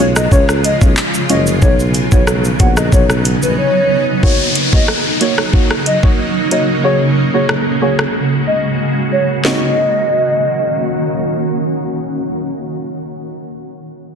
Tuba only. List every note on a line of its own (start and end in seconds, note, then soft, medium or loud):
0.00 0.27 B1 medium
0.32 0.75 C#2 loud
0.81 0.95 B1 loud
1.30 1.58 F#1 medium
1.62 2.06 B1 loud
2.12 2.54 B1 loud
2.60 2.88 A#1 loud
2.92 3.36 B1 loud
3.43 3.56 A#1 medium